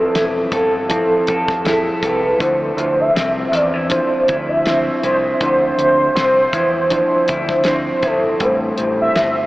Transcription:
Already playing: F3 C4 E4 A4
0.15 E1 E4, snare, closed hi-hat
0.52 G1 A4, kick, closed hi-hat
0.89 F3 C4 E4 A4, kick, closed hi-hat
1.27 F1 A4, kick, closed hi-hat
1.48 kick, snare
1.65 F3 C4 E4 G#4, snare, closed hi-hat
1.73 A4
2.03 C2 A4 B4, kick, closed hi-hat
2.38 D2 D3 F3 D4 E4 C5, kick, closed hi-hat
2.42 C5
2.77 D2 F3, closed hi-hat
3.00 E5
3.15 C2 C4, snare, closed hi-hat
3.52 E2 D4 D5, closed hi-hat
3.74 E4
3.89 F3 D4 E4 C5, kick, closed hi-hat
4.28 D2 E4, kick, closed hi-hat
4.49 E5
4.65 F3 C4 D4 E4 C5, snare, closed hi-hat
5.03 C2 E4 C5, closed hi-hat
5.41 D2 D3 F3 D4 E4 C5, kick, closed hi-hat
5.78 D2, closed hi-hat
6.15 C2 C4, snare, closed hi-hat
6.53 E2 E4, kick, closed hi-hat
6.90 F3 D4 E4 C5, kick, closed hi-hat
7.28 D2 E4, kick, closed hi-hat
7.49 kick, snare
7.64 F3 C4 D4 E4 C5, snare, closed hi-hat
8.03 G1 E4 A4, kick, closed hi-hat
8.40 A1 A2 G3 C4 E4 A4 C5, kick, closed hi-hat
8.78 A1 G3, closed hi-hat
9.01 E5
9.15 G1 C4, snare, closed hi-hat

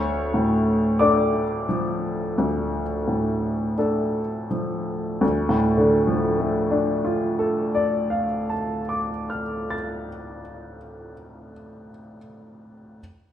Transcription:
Already playing: D2 C#5 C#6
0.34 A2
0.99 D4 A4 D5 D6
1.69 F3
2.38 D2
3.08 A2
3.78 D4 A4
4.51 F3
5.21 D2
5.49 A2
5.78 D3
6.07 F3
6.39 A3
6.71 D4
7.05 F4
7.39 A4
7.75 D5
8.10 F5
8.50 A5
8.89 D6
9.30 F6
9.70 A6

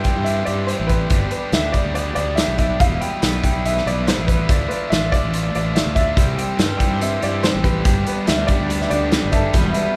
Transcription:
Already playing: E4 C5 G5 C6
0.03 E3 G3 E4 G4 G5, kick, closed hi-hat
0.08 C3
0.16 G2
0.24 E3 G3 E5, closed hi-hat
0.28 E4 G4
0.45 G2 G3 E4 G4 D5, closed hi-hat
0.67 C3 E3 G3 C5, closed hi-hat
0.71 E4 G4
0.80 A1
0.87 G4 B4, kick, closed hi-hat
0.92 G3 E4
1.10 G1 G2 D3 G3 B3 D4 G4 A4 D5 B5, kick, closed hi-hat
1.31 B3 D4 G4 B4, closed hi-hat
1.35 G3
1.52 D2 G3 B3 D4 G4 E5, snare, closed hi-hat
1.72 G3 B3 D4 G4 D5, kick, closed hi-hat
1.76 G2 D3
1.85 D2
1.95 G3 B3 D4 G4 D5, closed hi-hat
2.15 D2 B3 D4 G4 D5, closed hi-hat
2.20 G3
2.35 G2 D3 E5, snare, closed hi-hat
2.40 G3 B3 D4 G4
2.48 B1
2.58 G3 B3 D4 G4 E5, kick, closed hi-hat
2.79 E1 E2 B2 E3 G3 B3 E4 G4 B4 E5 F5, kick, closed hi-hat
3.01 E3 G3 B3 E4 G5, closed hi-hat
3.22 B1 E3 G3 B3 E4, snare, closed hi-hat
3.42 E2 B2 E3 G3 B3 E4 G5, kick, closed hi-hat
3.55 B1
3.63 E3 G3 B3 E4 E5, closed hi-hat
3.78 snare
3.85 B1 E3 G3 B3 E4 D5, closed hi-hat
4.05 E2 B2 E3 G3 B3 E4 C5, snare, closed hi-hat
4.18 A1
4.27 E3 G3 B3 E4 B4, kick, closed hi-hat
4.48 D2 D3 A3 D4 F4 D5 A5, kick, closed hi-hat
4.68 A3 D4 F4 B4, closed hi-hat
4.89 A1 D3 A3 D4 F4 E5, snare, closed hi-hat
5.11 D3 A3 D4 F4 D5, kick, closed hi-hat
5.23 A1
5.32 D3 A3 D4 F4, closed hi-hat
5.53 A1 A3 D4 F4 D5, closed hi-hat
5.73 D3 A3 D4 F4 E5, snare, closed hi-hat
5.86 D2
5.95 A3 D4 F4 E5, kick, closed hi-hat
6.15 C2 C3 E3 G3 C4 G4 C5 C6, kick, closed hi-hat
6.36 G3 C4 G4 G5, closed hi-hat
6.57 G2 E3 G3 C4 G4, snare, closed hi-hat
6.78 C3 E3 G3 C4 E4 G4 G5, kick, closed hi-hat
6.92 G2
6.98 E3 G3 C4 G4, closed hi-hat
7.02 E5
7.20 G2 G3 C4 E4 G4 D5, closed hi-hat
7.41 C3 E3 G3 C4 G4 C5, snare, closed hi-hat
7.55 A1
7.63 G3 C4 G4 B4, kick, closed hi-hat
7.83 G1 G2 D3 G3 B3 D4 G4, kick, closed hi-hat
7.88 B4 D5 A5
8.04 G3 B3 D4 G4 B4, closed hi-hat
8.26 D2 G3 B3 D4 G4 E5, snare, closed hi-hat
8.47 G2 D3 G3 B3 D4 G4 D5, kick, closed hi-hat
8.60 D2
8.68 G3 B3 D4 G4, closed hi-hat
8.81 E5, snare
8.90 D2 G3 B3 D4 G4 D5, closed hi-hat
9.10 G2 D3 G3 B3 D4 G4, snare, closed hi-hat
9.24 G1
9.32 G3 B3 D4 G4 A4 E5, kick, closed hi-hat
9.52 E1 E2 B2 E3 G3 B3 B4 G5 B5, kick, closed hi-hat
9.56 E4
9.73 G3 B3 E4 E5, closed hi-hat
9.77 E3

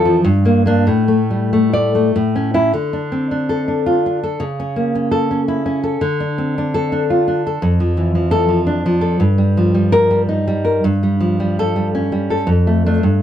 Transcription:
Already playing: F2 E3 A4
0.05 F3
0.24 G2
0.45 A#3
0.66 A#3 D4
0.87 A2
1.08 A3
1.30 G3
1.53 A3
1.73 D5
1.95 A3
2.16 A2
2.36 C#4
2.54 C#4 E4
2.73 D3
2.93 D4
3.12 C4
3.31 D4
3.49 A4
3.68 D4
3.86 F4
4.06 D4
4.23 A4
4.40 C#3
4.60 C#4
4.76 A#3
4.95 C#4
5.11 A4
5.31 C#4
5.48 E4
5.66 C#4
5.83 A4
6.01 D3
6.20 D4
6.38 C4
6.58 D4
6.74 A4
6.92 D4
7.10 F4
7.28 D4
7.47 A4
7.62 F2
7.80 F3
7.97 E3
8.15 F3
8.31 A4
8.49 F3
8.67 D4
8.86 F3
9.01 A4
9.20 G2
9.38 G3
9.57 F3
9.75 G3
9.92 A#4
10.11 G3
10.29 D#4
10.47 G3
10.65 A#4
10.84 G2
11.03 G3
11.20 F3
11.40 G3
11.59 A4
11.76 G3
11.95 C#4
12.12 G3
12.30 A4
12.47 F2
12.67 A3
12.86 A3 D4
13.03 G2

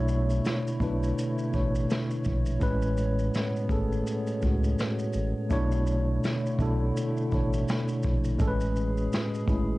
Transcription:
Already playing: B1 B2 D3 A3 D4 E4 C#5 E5
0.08 shaker
0.30 shaker
0.45 snare, closed hi-hat, shaker
0.67 shaker
0.80 B1 B2 A3 D4 E4 B4, kick, shaker
1.03 shaker
1.18 closed hi-hat, shaker
1.38 shaker
1.51 A1 B2 A3 D4 E4, kick, shaker
1.55 C#5
1.75 shaker
1.90 snare, closed hi-hat, shaker
2.11 shaker
2.24 A#1, kick, shaker
2.46 shaker
2.59 A1 A2 B2 G#3 B3 C#4 B4, kick, closed hi-hat, shaker
2.82 shaker
2.97 shaker
3.19 shaker
3.34 snare, closed hi-hat, shaker
3.56 shaker
3.68 G#1 A3 C#4 G#4 A4, kick, shaker
3.92 shaker
4.07 closed hi-hat, shaker
4.27 shaker
4.42 C#2 A2 G#3 C#4 F#4, kick, shaker
4.64 shaker
4.79 snare, closed hi-hat, shaker
4.99 shaker
5.13 A1, shaker
5.49 B1 B2 D3 A3 D4 E4 C#5, kick, closed hi-hat, shaker
5.72 shaker
5.87 shaker
6.24 snare, closed hi-hat, shaker
6.46 shaker
6.59 B1 B2 A3 D4 E4 A4, kick, shaker
6.97 closed hi-hat, shaker
7.17 shaker
7.31 A1 B2 A3 D4 E4 C#5, kick, shaker
7.53 shaker
7.68 snare, closed hi-hat, shaker
7.88 shaker
8.03 A#1, kick, shaker
8.24 shaker
8.37 A1 A2 B2 G#3 C#4 G#4 A4, kick, closed hi-hat, shaker
8.47 B4
8.61 shaker
8.76 shaker
8.97 shaker
9.13 snare, closed hi-hat, shaker
9.35 shaker
9.46 G#1 G#3 A3 C#4 E4, kick, shaker

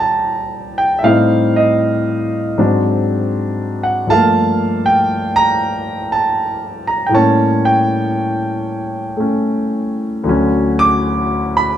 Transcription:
Already playing: A#2 F3 G3 D4 G5 A#5
0.00 A5
0.78 G5
0.99 A2 E5
1.04 G3 C4 D#4 C5 F5
1.56 D#5
2.58 G#2 F#3 C4 D4
3.83 F#5
4.07 G2 F3 A3 F5 A5
4.12 A#3
4.86 G5
5.36 A#5
6.12 A5
6.87 A#5
7.07 A2 G5
7.11 G3 A#3 C#4 C#5 A5
7.65 G5
9.17 A3 C#4
10.24 D2 D3 F#3
10.29 C#4
10.79 D6
11.57 B5

